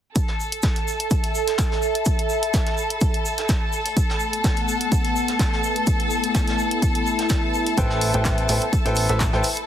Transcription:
0.16 9.66 A4 medium
0.16 4.49 A4 medium
0.16 9.66 A5 medium
0.16 kick loud
0.16 closed hi-hat medium
0.16 shaker medium
0.28 snare soft
0.40 shaker medium
0.52 closed hi-hat soft
0.63 3.73 E5 medium
0.63 kick loud
0.63 snare loud
0.63 closed hi-hat medium
0.63 shaker medium
0.75 closed hi-hat soft
0.88 shaker medium
1.00 closed hi-hat soft
1.11 kick loud
1.11 closed hi-hat medium
1.11 shaker medium
1.21 6.29 B5 medium
1.21 closed hi-hat soft
1.35 shaker medium
1.48 snare soft
1.48 closed hi-hat medium
1.58 kick loud
1.58 snare loud
1.58 closed hi-hat medium
1.58 shaker medium
1.72 snare soft
1.82 shaker medium
1.95 closed hi-hat medium
2.05 kick loud
2.05 closed hi-hat medium
2.05 shaker medium
2.19 closed hi-hat soft
2.29 shaker medium
2.43 closed hi-hat soft
2.54 kick loud
2.54 snare loud
2.54 closed hi-hat medium
2.54 shaker medium
2.67 snare soft
2.67 closed hi-hat soft
2.77 shaker medium
2.90 closed hi-hat soft
3.01 kick loud
3.01 closed hi-hat medium
3.01 shaker medium
3.14 closed hi-hat soft
3.25 shaker medium
3.38 snare soft
3.38 closed hi-hat soft
3.49 kick loud
3.49 snare loud
3.49 closed hi-hat medium
3.49 shaker medium
3.73 7.78 A3 medium
3.73 shaker medium
3.86 closed hi-hat soft
3.97 kick loud
3.97 closed hi-hat medium
3.97 shaker medium
4.02 5.63 F#5 medium
4.08 8.99 B3 medium
4.08 snare soft
4.20 shaker medium
4.33 closed hi-hat soft
4.44 kick loud
4.44 snare loud
4.44 closed hi-hat medium
4.44 shaker medium
4.56 closed hi-hat soft
4.68 shaker medium
4.81 closed hi-hat soft
4.92 kick loud
4.92 closed hi-hat medium
4.92 shaker medium
5.05 closed hi-hat soft
5.16 shaker medium
5.28 snare soft
5.28 closed hi-hat soft
5.39 kick loud
5.39 snare loud
5.39 closed hi-hat medium
5.39 shaker medium
5.53 snare soft
5.64 shaker medium
5.76 9.21 E4 medium
5.76 closed hi-hat soft
5.87 kick loud
5.87 closed hi-hat medium
5.87 shaker medium
6.00 closed hi-hat soft
6.10 shaker medium
6.24 closed hi-hat soft
6.34 kick loud
6.34 snare medium
6.34 closed hi-hat medium
6.34 shaker medium
6.47 snare soft
6.47 closed hi-hat soft
6.58 9.66 E5 medium
6.58 shaker medium
6.71 closed hi-hat soft
6.82 kick loud
6.82 closed hi-hat medium
6.82 shaker medium
6.95 closed hi-hat soft
7.06 shaker medium
7.19 snare soft
7.19 closed hi-hat soft
7.29 kick loud
7.29 snare loud
7.29 closed hi-hat medium
7.29 shaker medium
7.54 shaker medium
7.66 closed hi-hat soft
7.77 8.12 A1 medium
7.77 8.11 E4 medium
7.77 9.66 A4 medium
7.77 8.11 A4 medium
7.77 8.11 B4 medium
7.77 8.11 C5 medium
7.77 8.11 G5 loud
7.77 kick loud
7.77 closed hi-hat medium
7.77 shaker medium
7.90 snare soft
8.01 open hi-hat loud
8.01 shaker medium
8.14 8.47 A1 medium
8.14 8.46 E4 medium
8.14 8.46 A4 medium
8.14 8.46 B4 medium
8.14 8.46 C5 medium
8.14 8.46 G5 medium
8.14 closed hi-hat soft
8.25 kick loud
8.25 snare loud
8.25 clap loud
8.25 closed hi-hat medium
8.25 shaker medium
8.38 closed hi-hat soft
8.49 8.59 A1 medium
8.49 8.62 E4 medium
8.49 8.62 A4 medium
8.49 8.62 B4 medium
8.49 8.62 C5 medium
8.49 8.62 G5 medium
8.49 open hi-hat medium
8.49 shaker medium
8.62 closed hi-hat soft
8.67 9.66 B5 medium
8.73 kick loud
8.73 closed hi-hat medium
8.73 shaker medium
8.85 9.07 A1 medium
8.85 9.06 E4 medium
8.85 9.06 A4 medium
8.85 9.06 B4 medium
8.85 9.06 C5 medium
8.85 9.06 G5 medium
8.85 closed hi-hat soft
8.95 open hi-hat loud
8.95 shaker medium
9.09 9.31 A1 medium
9.09 9.20 E4 medium
9.09 9.20 A4 medium
9.09 9.20 B4 medium
9.09 9.20 C5 medium
9.09 9.20 E5 medium
9.09 snare soft
9.09 closed hi-hat soft
9.20 kick loud
9.20 snare loud
9.20 clap loud
9.20 closed hi-hat medium
9.20 shaker medium
9.33 9.42 A1 medium
9.33 9.44 E4 medium
9.33 9.44 A4 medium
9.33 9.44 B4 medium
9.33 9.44 C5 medium
9.33 9.44 G5 loud
9.33 snare soft
9.43 open hi-hat medium
9.43 shaker medium
9.57 closed hi-hat soft

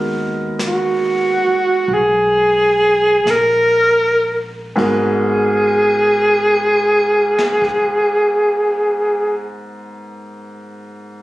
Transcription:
0.00 1.42 D#2 medium
0.00 4.75 G#3 soft
0.00 4.75 B3 soft
0.00 4.77 D#4 soft
0.00 4.76 F#4 soft
0.00 4.77 A#4 medium
0.59 brush sweep soft
0.59 snare soft
0.59 hi-hat pedal medium
0.67 1.95 F#4 medium
1.47 muted upright bass stroke soft
1.88 3.23 B1 medium
1.88 brush sweep soft
1.94 3.32 G#4 medium
3.25 4.72 A#1 medium
3.25 brush sweep soft
3.25 snare soft
3.25 hi-hat pedal medium
3.31 4.54 A#4 medium
4.76 9.42 G#1 medium
4.76 9.45 G#2 medium
4.76 9.46 G#3 soft
4.76 9.46 B3 medium
4.76 9.47 F#4 medium
4.76 9.49 A#4 medium
4.76 kick soft
4.76 crash medium
4.80 9.46 G#4 medium
7.39 snare soft
7.62 kick medium

